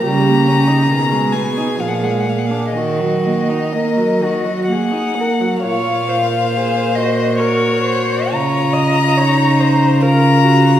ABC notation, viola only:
X:1
M:3/4
L:1/16
Q:1/4=67
K:Ebm
V:1 name="Viola"
=G, B, D E E, A, C E F, A, B, =D | E, G, B, E B, G, E, G, B, E B, G, | [K:Bbm] d2 c6 B2 c2 | d2 e2 d2 c2 B2 G2 |]